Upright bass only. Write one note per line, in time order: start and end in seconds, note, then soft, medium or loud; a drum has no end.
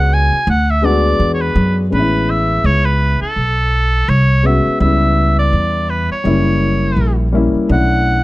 0.00 0.29 C#2 medium
0.32 muted upright bass stroke soft
0.47 1.16 D2 loud
1.20 1.54 E2 medium
1.56 1.90 F#2 loud
1.92 2.61 A1 medium
2.64 3.18 C#2 medium
3.21 muted upright bass stroke soft
3.36 4.05 B1 medium
4.08 4.63 C2 medium
4.66 muted upright bass stroke soft
4.80 5.49 C#2 loud
5.53 6.07 E2 medium
6.10 muted upright bass stroke soft
6.25 6.94 F#1 medium
6.96 7.51 A#1 medium
7.54 muted upright bass stroke soft
7.69 8.24 B1 loud